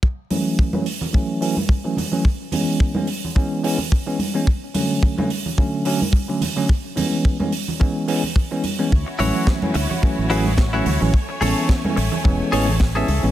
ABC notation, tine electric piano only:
X:1
M:4/4
L:1/16
Q:"Swing 16ths" 1/4=108
K:A
V:1 name="Tine electric piano"
z2 [E,F,A,C]3 [E,F,A,C] z2 [E,F,A,C]2 [E,F,A,C] z2 [E,F,A,C] z [E,F,A,C] | z2 [E,G,B,C]3 [E,G,B,C] z2 [E,G,B,C]2 [E,G,B,C] z2 [E,G,B,C] z [E,G,B,C] | z2 [D,F,A,C]3 [D,F,A,C] z2 [D,F,A,C]2 [D,F,A,C] z2 [D,F,A,C] z [D,F,A,C] | z2 [E,G,B,C]3 [E,G,B,C] z2 [E,G,B,C]2 [E,G,B,C] z2 [E,G,B,C] z [E,G,B,C] |
z2 [E,F,A,C]3 [E,F,A,C] z2 [E,F,A,C]2 [E,F,A,C] z2 [E,F,A,C] z [E,F,A,C] | z2 [E,B,C]3 [E,G,B,C] z2 [E,G,B,C]2 [E,G,B,C] z2 [E,G,B,C] z [E,G,B,C] |]